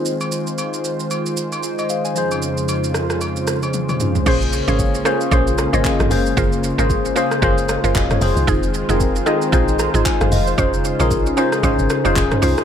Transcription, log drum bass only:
X:1
M:4/4
L:1/16
Q:"Swing 16ths" 1/4=114
K:Bbm
V:1 name="Log drum bass" clef=bass
z16 | z16 | B,,,3 A,,,3 z2 B,,,3 A,,, z A,,, G,,,2 | G,,,3 A,,,3 z2 G,,,3 G,,, F,,,2 F,,, C,, |
F,,,3 F,,,3 z2 B,,,3 A,,, z A,,, F,,,2 | F,,,3 B,,,3 z2 A,,, A,,, z F,,, F,,, z C,, z |]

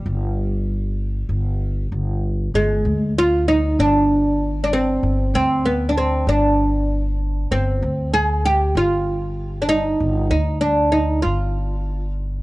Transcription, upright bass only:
X:1
M:4/4
L:1/8
Q:1/4=96
K:none
V:1 name="Upright bass" clef=bass
G,,,4 G,,,2 G,,,2 | G,,, D,,3 G,,,4 | G,,, D,,3 G,,,4 | G,,, D,,3 G,,,4 |
G,,, D,,3 G,,,4 |]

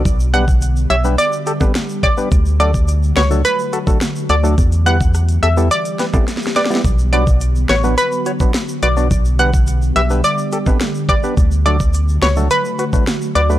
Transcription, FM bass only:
X:1
M:4/4
L:1/8
Q:1/4=106
K:Glyd
V:1 name="FM bass" clef=bass
B,,,3 B,,, z4 | D,,3 C,, z3 D,, | E,,3 E,, z4 | B,,,3 A,,, z3 B,,, |
B,,,3 B,,, z4 | D,,3 C,, z3 D,, |]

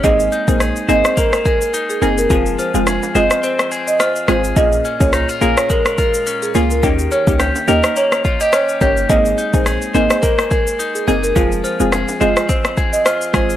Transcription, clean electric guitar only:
X:1
M:4/4
L:1/16
Q:"Swing 16ths" 1/4=106
K:Abmix
V:1 name="Clean electric guitar"
A,2 E2 A2 c2 B,2 A2 E2 A2 | F,2 F2 A2 c2 C2 A2 F2 A2 | B,,2 D2 E F B2 A,2 F2 D2 F2 | E,2 D2 =G2 B2 B,2 F G D2 G2 |
A,2 E2 A2 c2 B,2 A2 E2 A2 | F,2 F2 A2 c2 C2 A2 F2 A2 |]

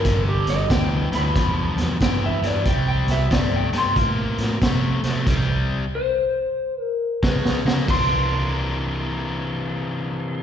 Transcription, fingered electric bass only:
X:1
M:4/4
L:1/8
Q:"Swing" 1/4=92
K:Cmix
V:1 name="Fingered electric bass" clef=bass
G,,, G,,, D,, D,, E,, E,, G,, G,, | C,, C,, G,, G,, A,, A,, C, C, | C,, z4 z _D,, _D, | C,,8 |]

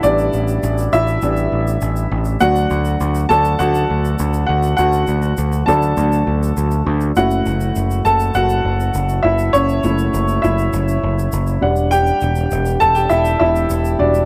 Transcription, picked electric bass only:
X:1
M:4/4
L:1/8
Q:1/4=101
K:D
V:1 name="Picked electric bass" clef=bass
A,,, A,,, A,,, A,,, A,,, A,,, A,,, A,,, | D,, D,, D,, D,, D,, D,, D,, D,, | D,, D,, D,, D,, D,, D,, D,, D,, | F,,, F,,, F,,, F,,, F,,, F,,, F,,, F,,, |
F,,, F,,, F,,, F,,, F,,, F,,, F,,, E,,,- | E,,, E,,, E,,, E,,, E,,, E,,, E,,, E,,, |]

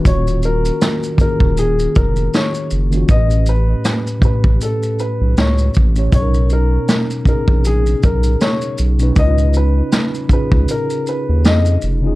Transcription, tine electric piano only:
X:1
M:4/4
L:1/16
Q:"Swing 16ths" 1/4=79
K:D#m
V:1 name="Tine electric piano"
[D,A,CEF]6 [D,A,CEG]8 z [D,A,CEF] | [=A,,=A,B,C=GB]6 [A,,A,CGB]8 z [A,,A,CGc] | [B,,B,CDGA]6 [C,B,CDG]8 z [B,,B,CDB] | [C,CD=E^EB]6 [C,CDEG]8 z [C,CDEG] |]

